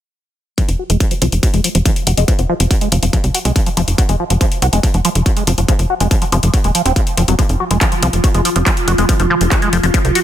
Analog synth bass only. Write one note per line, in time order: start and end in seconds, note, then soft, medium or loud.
0.69 0.75 F1 medium
0.90 0.97 F1 medium
1.22 1.29 C2 medium
1.32 1.39 F1 medium
1.54 1.61 F1 medium
1.75 1.82 F1 medium
2.07 2.14 F1 medium
2.17 2.24 F1 medium
2.39 2.46 F1 medium
2.60 2.67 F1 medium
2.92 2.99 F1 loud
3.03 3.10 F1 medium
3.24 3.31 C2 medium
3.45 3.52 C2 medium
3.77 3.84 F1 medium
3.88 3.95 F1 medium
4.09 4.16 F1 medium
4.30 4.37 F1 medium
4.62 4.69 C2 loud
4.73 4.80 F1 medium
4.94 5.01 F1 medium
5.15 5.22 F1 medium
5.47 5.54 F1 medium
5.58 5.65 F1 medium
5.79 5.86 F1 medium
6.00 6.07 F1 medium
6.32 6.39 F1 loud
6.43 6.50 F1 medium
6.64 6.71 D#1 medium
6.86 6.92 D#1 medium
7.17 7.24 F1 medium
7.28 7.35 F1 medium
7.49 7.56 F1 medium
7.71 7.78 F1 medium
8.03 8.09 C2 loud
8.13 8.20 F1 medium
8.34 8.41 F1 medium
8.56 8.63 F1 medium
8.88 8.95 F1 loud
8.98 9.05 F1 medium
9.20 9.27 F1 medium
9.41 9.48 F1 medium
9.73 9.80 F1 loud
9.83 9.90 F1 medium
10.05 10.12 C2 medium